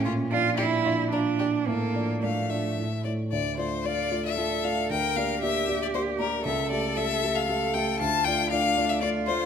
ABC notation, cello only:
X:1
M:3/4
L:1/8
Q:1/4=115
K:Dm
V:1 name="Cello"
z F E2 D2 | B,2 A,3 z | z2 F2 A2 | B2 G4 |
A4 A2 | F2 D2 F2 |]